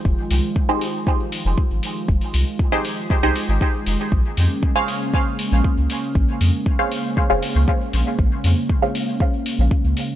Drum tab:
HH |--o---o---o---o-|-oo---o---o---o-|--o---o---o---o-|--o---o---o---o-|
BD |o---o---o---o---|o---o---o---o---|o---o---o---o---|o---o---o---o---|

HH |--o---o---o---o-|
BD |o---o---o---o---|